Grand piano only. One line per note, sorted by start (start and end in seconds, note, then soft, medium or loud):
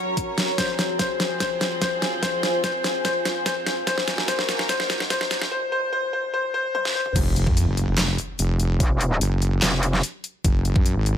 0.58 0.89 C5 medium
0.99 1.39 C5 medium
1.40 1.72 C5 medium
1.81 2.21 C5 medium
2.23 2.54 C5 medium
2.64 3.03 C5 medium
3.05 3.36 C5 loud
3.46 3.85 C5 medium
3.87 4.18 C5 loud
4.28 4.59 C5 medium
4.69 5.00 C5 loud
5.10 5.41 C5 loud
5.51 5.70 C5 loud
5.72 5.91 C5 loud
5.93 6.12 C5 loud
6.13 6.32 C5 loud
6.34 6.53 C5 loud
6.54 6.73 C5 loud
6.75 6.94 C5 loud
6.95 7.14 C5 loud